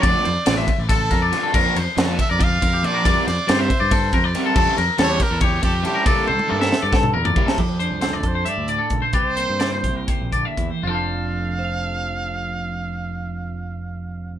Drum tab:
CC |--------------|x-------------|--------------|x-------------|
RD |x-x-x-x-x-x-x-|--x-x-x-x-x-x-|x-x-x-x-x-x-x-|--x-x-x-x-x-x-|
HH |--------------|--------------|--------------|--------------|
SD |----o---o-o-o-|----o---------|--o-o-------o-|----o-o-------|
T1 |--------------|--------------|--------------|--------------|
T2 |--------------|--------------|--------------|--------------|
FT |--------------|--------------|--------------|--------------|
BD |o-----o-o-o---|o-----o-o-o---|o-----o-o-o---|o-----o-o-o---|

CC |--------------|x-------------|--------------|--------------|
RD |x-------------|--------------|--------------|--------------|
HH |--------------|--x-x-x-x-x-x-|x-x-x-x-x-x-x-|--------------|
SD |-----oo-o----o|----o---------|----o---------|--------------|
T1 |--oo----------|--------------|--------------|--------------|
T2 |---------o----|--------------|--------------|--------------|
FT |-----------o--|--------------|--------------|--------------|
BD |o-------o---o-|o-----o-----o-|o-----o-o-o-o-|--------------|

CC |--------------|
RD |--------------|
HH |--------------|
SD |--------------|
T1 |--------------|
T2 |--------------|
FT |--------------|
BD |--------------|